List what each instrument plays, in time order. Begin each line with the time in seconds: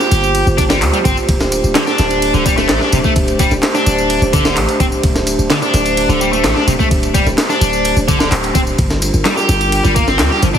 Already playing: analog synth pad A#3 F4 G4 C5
0.00 overdriven electric guitar G4, snare, tambourine
0.11 808-style bass G1, ride, tambourine
0.24 tambourine
0.35 ride, tambourine
0.47 808-style bass G1, tambourine
0.57 overdriven electric guitar D4, kick, ride, tambourine
0.69 overdriven electric guitar G3, snare, tambourine
0.82 808-style bass D2, clap, ride, tambourine
0.93 overdriven electric guitar G3, ride, tambourine
1.04 808-style bass G1, overdriven electric guitar C4, kick, ride, tambourine
1.17 tambourine
1.28 808-style bass D1, analog synth pad A3 D4, kick, ride, tambourine
1.40 snare, tambourine
1.52 ride, tambourine
1.64 808-style bass D1, tambourine
1.75 overdriven electric guitar D3, snare, clap, ride, tambourine
1.87 overdriven electric guitar D4, snare, tambourine
1.98 808-style bass D1, snare, ride, tambourine
2.10 ride, tambourine
2.22 ride, tambourine
2.34 808-style bass D1, overdriven electric guitar D3, tambourine
2.46 overdriven electric guitar G3, kick, ride, tambourine
2.57 overdriven electric guitar A3, snare, tambourine
2.69 808-style bass A1, snare, clap, ride, tambourine
2.81 overdriven electric guitar D4, snare
2.92 808-style bass D1, overdriven electric guitar C3, ride, tambourine
3.04 overdriven electric guitar A3, kick, tambourine
3.16 808-style bass D1, kick, ride, tambourine
3.28 ride, tambourine
3.39 overdriven electric guitar G3, kick, ride, tambourine
3.51 808-style bass D1, snare, tambourine
3.63 snare, clap, ride, tambourine
3.75 overdriven electric guitar D4, snare, tambourine
3.86 808-style bass D1, ride, tambourine
3.98 tambourine
4.10 ride, tambourine
4.22 808-style bass D1, tambourine
4.33 overdriven electric guitar D3, kick, ride, tambourine
4.45 overdriven electric guitar D3, snare, tambourine
4.57 808-style bass A1, clap, ride, tambourine
4.69 ride, tambourine
4.80 808-style bass D1, overdriven electric guitar C4, kick, ride, tambourine
4.92 tambourine
5.03 808-style bass D1, kick, ride, tambourine
5.16 snare, tambourine
5.27 ride, tambourine
5.39 808-style bass D1, tambourine
5.50 overdriven electric guitar D3, snare, clap, ride, tambourine
5.62 overdriven electric guitar D4, snare, tambourine
5.74 808-style bass D1, snare, ride, tambourine
5.86 ride, tambourine
5.97 ride, tambourine
6.09 808-style bass D1, overdriven electric guitar D3, tambourine
6.21 overdriven electric guitar G3, tambourine
6.32 overdriven electric guitar A3, tambourine
6.44 808-style bass A1, snare, clap, ride, tambourine
6.56 overdriven electric guitar D4, snare
6.67 808-style bass D1, overdriven electric guitar C3, ride, tambourine
6.79 overdriven electric guitar A3, kick, tambourine
6.91 808-style bass D1, kick, ride, tambourine
7.03 ride, tambourine
7.14 overdriven electric guitar G3, kick, ride, tambourine
7.26 808-style bass D1, snare, tambourine
7.38 snare, clap, ride, tambourine
7.49 overdriven electric guitar D4, snare, tambourine
7.61 808-style bass D1, ride, tambourine
7.73 tambourine
7.85 ride, tambourine
7.97 808-style bass D1, tambourine
8.08 overdriven electric guitar D3, kick, ride, tambourine
8.20 overdriven electric guitar D3, snare, tambourine
8.31 808-style bass D1, clap, ride, tambourine
8.43 ride, tambourine
8.55 808-style bass D1, overdriven electric guitar C4, kick, ride, tambourine
8.67 tambourine
8.78 808-style bass G1, analog synth pad G3 D4 F4 A#4, kick, ride, tambourine
8.90 snare, tambourine
9.02 ride, tambourine
9.14 808-style bass G1, tambourine
9.25 overdriven electric guitar G3, snare, clap, ride, tambourine
9.37 overdriven electric guitar G4, snare, tambourine
9.49 808-style bass G1, snare, ride, tambourine
9.61 ride, tambourine
9.72 ride, tambourine
9.84 808-style bass G1, overdriven electric guitar G3, tambourine
9.95 overdriven electric guitar A#3, kick, ride, tambourine
10.07 overdriven electric guitar C4, snare, tambourine
10.19 808-style bass D2, snare, clap, ride, tambourine
10.31 overdriven electric guitar G4, snare
10.42 808-style bass G1, overdriven electric guitar F3, ride, tambourine
10.54 overdriven electric guitar D4, kick, tambourine